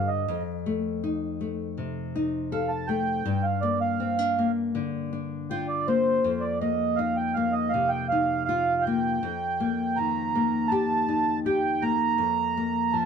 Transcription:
0.00 0.27 G2 medium
0.00 0.23 D3 medium
0.00 0.23 D4 soft
0.07 0.42 D#5 medium
0.28 3.25 F2 medium
0.66 1.39 A3 soft
1.04 2.14 D#4 medium
1.41 2.88 A3 medium
1.77 3.21 C3 medium
2.15 3.22 D#4 medium
2.52 3.21 A4 medium
2.52 2.71 F5 medium
2.68 2.88 A5 medium
2.87 3.21 A3 medium
2.87 3.45 G5 medium
3.25 6.19 G2 medium
3.43 3.63 F5 medium
3.61 4.38 A#3 medium
3.61 3.79 D5 medium
3.81 4.51 F5 medium
4.00 4.19 C4 soft
4.19 5.12 D4 soft
4.39 5.87 A#3 medium
4.75 6.19 D3 medium
5.13 6.19 D4 medium
5.51 8.48 F4 medium
5.51 5.67 G5 medium
5.68 5.87 D5 medium
5.88 6.61 A#3 medium
5.88 6.45 C5 medium
6.24 9.22 F2 medium
6.40 6.58 D5 medium
6.61 7.36 A#3 soft
6.61 6.99 D#5 medium
6.96 8.10 D#4 medium
6.96 7.16 F5 loud
7.17 7.36 G5 medium
7.34 8.85 A#3 medium
7.34 7.54 F5 medium
7.52 7.72 D#5 medium
7.69 7.90 F5 loud
7.74 9.18 C3 medium
7.89 8.07 G5 loud
8.08 9.18 D#4 medium
8.08 8.43 F5 medium
8.45 8.84 F5 medium
8.49 9.22 F4 medium
8.82 9.98 G5 medium
8.87 9.18 A#3 medium
9.23 12.17 F2 medium
9.60 10.35 A#3 medium
9.96 12.20 D#3 medium
9.96 10.73 A#5 loud
10.35 11.82 A#3 medium
10.68 11.45 G4 medium
10.68 11.40 A5 loud
11.08 12.15 D#4 medium
11.46 12.15 G4 medium
11.46 11.84 G5 loud
11.82 12.57 A#3 medium
11.82 12.97 A#5 loud
12.18 13.05 F2 medium
12.57 13.05 A#3 medium
12.93 13.05 F3 medium
12.93 13.05 A5 loud

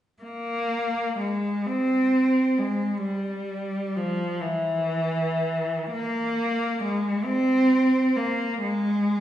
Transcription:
0.22 1.14 A#3 medium
1.19 1.65 G#3 soft
1.66 2.58 C4 medium
2.58 3.04 G#3 soft
3.03 3.94 G3 soft
3.97 4.42 F3 soft
4.41 5.94 E3 soft
5.92 6.80 A#3 medium
6.84 7.27 G#3 soft
7.25 8.16 C4 medium
8.16 8.62 A#3 medium
8.63 9.20 G#3 medium

